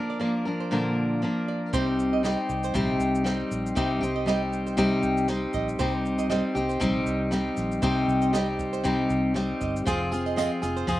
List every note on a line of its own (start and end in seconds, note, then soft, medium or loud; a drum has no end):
0.00 0.18 F3 soft
0.00 0.19 A#3 medium
0.00 0.20 D4 soft
0.00 0.20 A#4 medium
0.00 1.69 A#4 medium
0.00 1.69 D5 medium
0.00 1.69 F5 medium
0.00 1.69 D6 medium
0.10 0.20 D5 medium
0.19 0.46 F3 medium
0.19 0.46 A#3 medium
0.19 0.45 D4 medium
0.19 0.44 A#4 medium
0.19 0.34 D5 medium
0.45 0.71 F3 medium
0.45 0.71 A#3 soft
0.45 0.71 D4 medium
0.45 0.71 A#4 medium
0.60 0.95 C5 medium
0.71 1.22 A#2 medium
0.71 1.22 D3 medium
0.71 1.21 F3 medium
0.71 1.21 A#3 medium
0.71 1.22 D4 medium
0.71 1.23 A#4 medium
1.22 1.73 F3 medium
1.22 1.73 A#3 medium
1.22 1.73 D4 medium
1.22 1.74 A#4 medium
1.48 1.61 D5 medium
1.73 2.35 C2 loud
1.73 2.24 C3 medium
1.73 2.22 G3 medium
1.73 2.23 C4 medium
1.73 2.23 D#4 medium
1.73 9.82 G4 medium
1.73 2.24 G4 medium
1.73 11.00 C5 medium
1.73 1.87 C5 loud
1.73 9.82 D#5 medium
1.73 9.82 C6 medium
1.73 kick loud
1.73 shaker medium
1.99 shaker soft
2.13 2.23 D#5 medium
2.23 2.73 G3 medium
2.23 2.75 C4 medium
2.23 2.74 D#4 medium
2.23 2.74 G4 medium
2.23 2.38 D#5 medium
2.23 snare loud
2.23 shaker medium
2.49 2.70 C2 loud
2.49 shaker medium
2.63 2.99 C5 medium
2.63 shaker medium
2.74 2.96 A#1 medium
2.74 3.25 C3 loud
2.74 3.23 G3 medium
2.74 3.24 C4 medium
2.74 3.24 D#4 loud
2.74 3.25 G4 loud
2.74 kick loud
2.74 shaker medium
3.00 3.42 C2 loud
3.00 shaker medium
3.15 shaker medium
3.24 3.75 G3 medium
3.24 3.76 C4 medium
3.24 3.76 D#4 medium
3.24 3.76 G4 medium
3.24 snare loud
3.24 shaker medium
3.51 3.72 A#1 medium
3.51 shaker medium
3.66 shaker medium
3.75 3.98 C2 loud
3.75 4.01 C3 medium
3.75 4.02 G3 medium
3.75 4.02 C4 loud
3.75 4.00 D#4 medium
3.75 3.99 G4 medium
3.75 3.90 C5 medium
3.75 kick loud
3.75 shaker medium
4.01 4.99 C2 loud
4.01 4.26 C4 soft
4.01 4.27 D#4 medium
4.01 4.27 G4 medium
4.01 shaker soft
4.16 4.26 D#5 medium
4.26 4.76 G3 medium
4.26 4.77 C4 medium
4.26 4.77 D#4 medium
4.26 4.77 G4 medium
4.26 4.41 D#5 medium
4.26 snare loud
4.26 shaker medium
4.53 shaker medium
4.67 5.01 C5 medium
4.67 shaker medium
4.77 5.28 C3 loud
4.77 5.27 G3 loud
4.77 5.28 C4 loud
4.77 5.28 D#4 loud
4.77 5.29 G4 loud
4.77 kick loud
4.77 shaker medium
5.03 5.45 C2 loud
5.03 shaker medium
5.17 shaker medium
5.28 5.78 G3 medium
5.28 5.80 C4 medium
5.28 5.79 D#4 medium
5.28 5.80 G4 medium
5.28 snare loud
5.28 shaker medium
5.53 5.75 A#1 medium
5.53 5.67 D#5 medium
5.53 kick medium
5.53 snare soft
5.53 shaker medium
5.69 shaker medium
5.79 6.41 C2 loud
5.79 6.30 C3 medium
5.79 6.28 G3 medium
5.79 6.30 C4 loud
5.79 6.30 D#4 medium
5.79 6.31 G4 loud
5.79 5.93 C5 loud
5.79 kick loud
5.79 shaker medium
6.06 shaker soft
6.19 6.29 D#5 medium
6.19 shaker medium
6.30 6.55 G3 medium
6.30 6.56 C4 medium
6.30 6.55 D#4 medium
6.30 6.54 G4 medium
6.30 6.43 D#5 medium
6.30 snare loud
6.30 shaker medium
6.55 6.76 C2 medium
6.55 6.80 C4 medium
6.55 6.80 D#4 medium
6.55 6.80 G4 medium
6.55 shaker medium
6.69 7.04 C5 medium
6.69 shaker medium
6.80 7.02 A#1 loud
6.80 7.31 C3 loud
6.80 7.30 G3 loud
6.80 7.31 C4 loud
6.80 7.31 D#4 loud
6.80 7.32 G4 loud
6.80 kick loud
6.80 shaker medium
7.06 7.48 C2 loud
7.06 shaker medium
7.31 7.81 G3 medium
7.31 7.82 C4 medium
7.31 7.82 D#4 medium
7.31 7.83 G4 medium
7.31 snare loud
7.31 shaker medium
7.57 7.78 A#1 loud
7.57 snare soft
7.57 shaker medium
7.72 shaker medium
7.82 8.04 C2 loud
7.82 8.33 C3 medium
7.82 8.32 G3 medium
7.82 8.33 C4 loud
7.82 8.33 D#4 loud
7.82 8.34 G4 loud
7.82 7.96 C5 medium
7.82 kick loud
7.82 shaker medium
8.08 9.06 C2 loud
8.08 shaker soft
8.22 8.32 D#5 medium
8.22 shaker soft
8.33 8.83 G3 medium
8.33 8.84 C4 medium
8.33 8.84 D#4 medium
8.33 8.84 G4 medium
8.33 8.47 D#5 medium
8.33 snare loud
8.33 shaker medium
8.59 kick medium
8.59 shaker medium
8.73 9.08 C5 medium
8.73 shaker medium
8.84 9.35 C3 medium
8.84 9.33 G3 medium
8.84 9.35 C4 loud
8.84 9.35 D#4 medium
8.84 9.35 G4 loud
8.84 kick loud
8.84 shaker medium
9.10 9.52 C2 medium
9.10 shaker medium
9.34 9.85 G3 medium
9.34 9.86 C4 medium
9.34 9.86 D#4 medium
9.34 9.87 G4 medium
9.34 snare loud
9.34 shaker medium
9.61 9.82 G1 loud
9.61 9.74 D#5 medium
9.61 kick medium
9.61 snare soft
9.61 shaker medium
9.76 shaker medium
9.84 10.48 F1 loud
9.84 10.11 F3 medium
9.84 10.12 C4 medium
9.84 10.11 F4 loud
9.84 11.00 G#4 medium
9.84 10.10 G#4 loud
9.84 10.00 C5 loud
9.84 11.00 F5 medium
9.84 11.00 C6 medium
9.84 kick loud
9.84 tambourine medium
9.84 shaker medium
10.12 10.36 C4 medium
10.12 10.37 F4 medium
10.12 10.37 G#4 medium
10.12 tambourine soft
10.12 shaker soft
10.26 10.36 D#5 medium
10.26 tambourine soft
10.36 10.62 F3 medium
10.36 10.63 C4 medium
10.36 10.62 F4 medium
10.36 10.61 G#4 medium
10.36 10.50 D#5 medium
10.36 snare loud
10.36 tambourine medium
10.36 shaker medium
10.62 10.83 F1 loud
10.62 10.87 C4 soft
10.62 10.87 F4 medium
10.62 10.87 G#4 medium
10.62 tambourine medium
10.62 shaker medium
10.77 11.00 C5 medium
10.77 shaker medium
10.87 11.00 F1 medium
10.87 11.00 F3 loud
10.87 11.00 C4 medium
10.87 11.00 F4 medium
10.87 11.00 G#4 loud
10.87 kick loud
10.87 tambourine medium
10.87 shaker medium